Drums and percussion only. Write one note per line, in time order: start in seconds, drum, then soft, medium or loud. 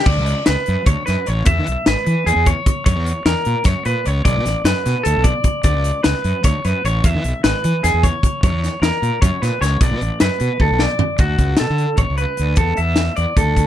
0.06 kick loud
0.06 crash loud
0.26 closed hi-hat medium
0.46 snare loud
0.46 closed hi-hat medium
0.66 closed hi-hat medium
0.86 kick loud
0.86 closed hi-hat medium
1.07 snare soft
1.07 closed hi-hat medium
1.26 closed hi-hat medium
1.45 kick loud
1.45 closed hi-hat medium
1.67 closed hi-hat medium
1.86 snare loud
1.86 closed hi-hat medium
2.06 closed hi-hat medium
2.27 closed hi-hat medium
2.46 kick medium
2.46 closed hi-hat medium
2.66 kick medium
2.66 closed hi-hat medium
2.86 kick loud
2.86 closed hi-hat medium
3.06 closed hi-hat medium
3.26 snare loud
3.26 closed hi-hat medium
3.45 closed hi-hat medium
3.64 kick loud
3.64 snare soft
3.64 closed hi-hat medium
3.85 closed hi-hat medium
4.05 closed hi-hat medium
4.25 kick loud
4.25 closed hi-hat medium
4.46 snare soft
4.46 closed hi-hat medium
4.65 snare medium
4.65 closed hi-hat medium
4.86 snare soft
4.86 closed hi-hat medium
5.05 closed hi-hat medium
5.24 kick medium
5.24 closed hi-hat medium
5.44 kick medium
5.44 closed hi-hat medium
5.63 kick medium
5.63 closed hi-hat medium
5.84 closed hi-hat medium
6.04 snare loud
6.04 closed hi-hat medium
6.24 closed hi-hat medium
6.44 kick loud
6.44 closed hi-hat medium
6.65 closed hi-hat medium
6.85 closed hi-hat medium
7.04 kick loud
7.04 closed hi-hat medium
7.24 closed hi-hat medium
7.44 snare loud
7.44 closed hi-hat medium
7.64 closed hi-hat medium
7.84 snare soft
7.84 closed hi-hat medium
8.03 kick medium
8.03 closed hi-hat medium
8.23 kick medium
8.23 closed hi-hat medium
8.43 kick loud
8.43 closed hi-hat medium
8.64 snare soft
8.64 closed hi-hat medium
8.83 snare loud
8.83 closed hi-hat medium
9.03 closed hi-hat medium
9.22 kick loud
9.22 closed hi-hat medium
9.43 snare soft
9.43 closed hi-hat medium
9.62 snare soft
9.62 closed hi-hat medium
9.81 kick loud
9.81 closed hi-hat medium
10.01 closed hi-hat medium
10.20 snare loud
10.20 closed hi-hat medium
10.40 closed hi-hat medium
10.60 kick medium
10.79 snare medium
10.99 floor tom loud
11.18 kick medium
11.18 closed hi-hat medium
11.38 kick medium
11.38 closed hi-hat medium
11.57 snare loud
11.57 closed hi-hat medium
11.78 closed hi-hat soft
11.97 kick medium
11.97 closed hi-hat medium
12.18 closed hi-hat medium
12.37 closed hi-hat medium
12.56 kick loud
12.56 closed hi-hat medium
12.77 closed hi-hat medium
12.96 snare medium
12.96 closed hi-hat medium
13.16 closed hi-hat medium
13.37 kick medium
13.37 closed hi-hat medium
13.57 kick medium
13.57 closed hi-hat medium